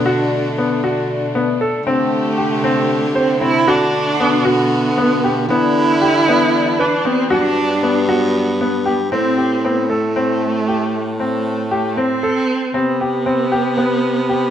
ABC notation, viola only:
X:1
M:7/8
L:1/8
Q:1/4=116
K:Ador
V:1 name="Viola"
z6 z | A,4- A, C E | D3 B,4 | E4- E D C |
D3 B,3 B, | C2 B, A,4- | A, A,3 C3 | B,6- B, |]